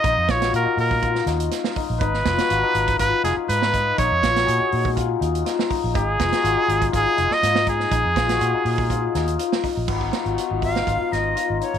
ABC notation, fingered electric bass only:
X:1
M:4/4
L:1/16
Q:1/4=122
K:G#dor
V:1 name="Fingered electric bass" clef=bass
A,,, E,, A,,,2 A,, z A,,4 D,,2 z3 A,,, | G,,,2 E,,, z G,,, z G,,,2 G,,, z E,,, z G,,4 | A,,, E,, A,,,2 A,, z A,,4 D,,2 z3 A,,, | G,,,2 E,,, z G,,, z G,,,2 G,,, z E,,, z G,,4 |
A,,, E,, A,,,2 A,, z A,,4 D,,2 z3 A,,, | G,,,2 z G,,, z G,,,3 G,,, z G,,,2 z G,,, z G,,, |]